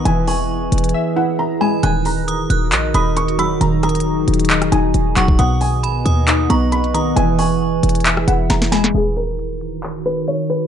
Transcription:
<<
  \new Staff \with { instrumentName = "Synth bell" } { \time 4/4 \key ees \phrygian \tempo 4 = 135 r8 des'''8 r2 r8 b''8 | ges'''4 ees'''8 ges'''4 ees'''4 fes'''8 | r8 ees'''8 r2 r8 des'''8 | dis'''4 b''8 dis'''4 des'''4 dis'''8 |
r8 des'''8 r2 r8 b''8 | r1 | }
  \new Staff \with { instrumentName = "Felt piano" } { \time 4/4 \key ees \phrygian gis''8 gis''2 ges''8 bes''8 gis''8 | aes''8 bes''2 ces'''8 des'''8 ces'''8 | bes''8 bes''2 aes''4 ges''8 | fis''8 aes''2 bes''8 b''8 bes''8 |
gis''8 gis''2 ges''8 bes''8 gis''8 | aes'8 bes'2 ces''8 des''8 ces''8 | }
  \new Staff \with { instrumentName = "Ambient pad" } { \time 4/4 \key ees \phrygian << { r1 | bes'1 | aes'1 | fis''1 |
r1 | bes'1 | } \\ { <e e' gis' b'>1 | <ees ees' ges'>1~ | <ees ees' ges'>1 | <b b' dis''>1 |
<e e' gis'>1 | <ees ees' ges'>1 | } >> }
  \new Staff \with { instrumentName = "Synth keys" } { \time 4/4 \key ees \phrygian e2 e''8 e'4 gis8 | ees2 ees''8 ees'4 ges8 | ees2 ees''8 ees'4 ges8 | b,2 dis'8 b4 dis8 |
e2 e''8 e'4 gis8 | r1 | }
  \new Staff \with { instrumentName = "808-style bass" } { \clef bass \time 4/4 \key ees \phrygian e,,4. e,,8 r2 | ees,,4. ees,,8 bes,,8 ees,,4. | ees,,4. ees,,4 ees,,8 ees,,8 ees,,8 | b,,4 bes,,16 b,,16 dis,4 b,,4. |
e,,4. e,,4 e,,8 e,,4 | ees,,2. r4 | }
  \new DrumStaff \with { instrumentName = "Drums" } \drummode { \time 4/4 hh8 hho8 r8 hh32 hh32 hh32 hh32 r4 r4 | hh8 hho8 hh8 hh8 <hc hh>8 hh8 hh16 hh16 hh8 | hh8 <hh hho ss>32 hh32 hh32 hh32 r8 hh32 hh32 hh32 hh32 <hc hh>16 <hh ss>16 hh8 hh8 <hc hh>16 bd16 | hh8 hho8 hh8 hh8 <hc hh>8 hh8 hh16 hh16 hh8 |
hh8 hho8 r8 hh32 hh32 hh32 hh32 <hc hh>16 ss16 hh8 <hh sn>16 sn16 <hh sn>16 sn16 | hh8 hh8 hh8 hh8 <hc hh>8 hh8 hh8 hh8 | }
>>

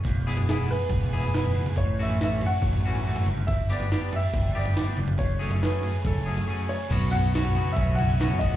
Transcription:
<<
  \new Staff \with { instrumentName = "Upright piano" } { \time 4/4 \key b \mixolydian \tempo 4 = 140 r4 gis'8 b'4. b'4 | cis''8 e''8 e''8 fis''2 r8 | e''8 d''4 e''4 d''4 r8 | cis''4 b'4 a'4. cis''8~ |
cis''8 fis''4. e''8 fis''4 dis''8 | }
  \new Staff \with { instrumentName = "Clean electric guitar" } { \time 4/4 \key b \mixolydian r8 <e b e' gis'>8 <e b e' gis'>8 r4 <e b e' gis'>8 <e b e' gis'>8 r8 | r8 <e a cis' fis'>8 <e a cis' fis'>8 r4 <e a cis' fis'>8 <e a cis' fis'>8 r8 | r8 <b d' g'>8 <b d' g'>8 r4 <b d' g'>8 <b d' g'>8 r8 | r8 <fis a cis' gis'>8 <fis a cis' gis'>8 r4 <fis a cis' gis'>8 <fis a cis' gis'>8 r8 |
<fis b cis' fis'>8 <b cis' fis'>8 <fis b cis' fis'>8 <fis b cis' fis'>8 <fis b cis' fis'>8 <b cis' fis'>8 <fis b cis' fis'>8 <b cis' fis'>8 | }
  \new Staff \with { instrumentName = "Overdriven electric guitar" } { \time 4/4 \key b \mixolydian e,8 gis8 b8 gis'8 b8 gis'8 gis8 b8 | a,8 a8 cis'8 fis'8 cis'8 fis'8 a8 g,8 | g,8 b8 d'8 g'8 d'8 g'8 b8 fis,8 | fis,8 a8 cis'8 gis'8 cis'8 gis'8 a8 cis'8 |
b,8 b8 fis8 cis'8 b8 cis'8 b8 fis'8 | }
  \new Staff \with { instrumentName = "Fingered electric bass" } { \clef bass \time 4/4 \key b \mixolydian e,,2 e,,2 | a,,2 a,,4. g,,8~ | g,,4. r8 g,,4. fis,,8~ | fis,,4. r8 fis,,4 r4 |
b,,2 b,,4. gis,,8 | }
  \new DrumStaff \with { instrumentName = "Drums" } \drummode { \time 4/4 <bd tomfh>8. tomfh16 sn8 tomfh8 <bd tomfh toml>8. tomfh16 sn16 tomfh16 toml16 <tomfh toml>16 | <bd tomfh>8. tomfh16 sn8 tomfh8 <bd tomfh toml>16 tomfh8 tomfh16 r16 tomfh16 toml16 tomfh16 | <bd tomfh>8. tomfh16 sn8 tomfh8 <bd tomfh toml>8. tomfh16 sn16 tomfh16 toml16 <tomfh toml>16 | <bd tomfh>8. tomfh16 sn8 tomfh8 <bd tomfh toml>16 tomfh8 tomfh16 r4 |
<cymc bd tomfh>8 tomfh8 sn16 tomfh16 toml8 <bd tomfh>8 <tomfh toml>8 <sn toml>16 tomfh16 bd16 toml16 | }
>>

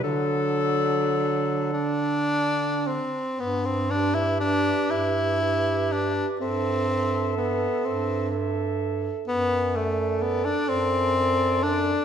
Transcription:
<<
  \new Staff \with { instrumentName = "Clarinet" } { \time 6/8 \key g \major \tempo 4. = 41 a'2~ a'8 r8 | r8 b'4. b'4 | e''8 e''4. e''4 | r8 d''4. d''4 | }
  \new Staff \with { instrumentName = "Alto saxophone" } { \time 6/8 \key g \major d'2~ d'8 r8 | r8 g'4. g'4 | a'8 a'4. a'4 | r8 a'4. a'4 | }
  \new Staff \with { instrumentName = "Tenor saxophone" } { \time 6/8 \key g \major fis4. d'4 c'8 | b16 c'16 d'16 e'16 d'8 e'4 d'8 | c'4 b8 c'8 r4 | b8 a8 b16 d'16 c'4 d'8 | }
  \new Staff \with { instrumentName = "Bass clarinet" } { \clef bass \time 6/8 \key g \major d2~ d8 r8 | g,4. g,4. | g,4. g,4. | fis,4. fis,4. | }
>>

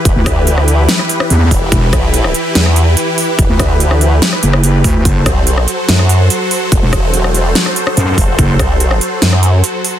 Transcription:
<<
  \new Staff \with { instrumentName = "Supersaw synth" } { \time 4/4 \key e \minor \tempo 4 = 144 <e e' g' b'>1~ | <e e' g' b'>1~ | <e e' g' b'>1 | <fis fis' a' c''>1~ |
<fis fis' a' c''>1~ | <fis fis' a' c''>1 | }
  \new Staff \with { instrumentName = "Wobble bass" } { \clef bass \time 4/4 \key e \minor e,,8 d,4. r4. e,,8 | r8 b,,4 r8 e,4 r4 | e,,8 d,4. r2 | r8 c,4 r8 fis,4 r4 |
fis,,8 e,,4. r4. fis,,8 | r8 c,4 r8 fis,4 r4 | }
  \new Staff \with { instrumentName = "Wobble bass" } { \clef bass \time 4/4 \key e \minor r16 d,16 r2 r8 e,8 r8 | e,,8 r2. r8 | r16 d,16 r2 fis,,4 d,8 | fis,,8 r2. r8 |
r16 e,,16 r2 r8 fis,8 r8 | fis,,8 r2. r8 | }
  \new DrumStaff \with { instrumentName = "Drums" } \drummode { \time 4/4 <hh bd>8 <hh bd ss>8 hh16 ss16 hh8 <hh sn>16 ss16 hh16 ss16 hh8 <hho bd>8 | <hh bd>8 <hh bd ss>8 hh16 ss16 hh8 <hh sn>16 ss16 hh8 hh8 hho8 | <hh bd>8 <hh bd ss>8 hh16 ss16 hh8 <hh sn>16 ss16 hh16 ss16 hh8 <hho bd>8 | <hh bd>8 <hh bd ss>8 hh16 ss16 hh8 <hh sn>16 ss16 hh8 hh8 hho8 |
<hh bd>8 <hh bd ss>8 hh16 ss16 hh8 <hh sn>16 ss16 hh16 ss16 hh8 <hho bd>8 | <hh bd>8 <hh bd ss>8 hh16 ss16 hh8 <hh sn>16 ss16 hh8 hh8 hho8 | }
>>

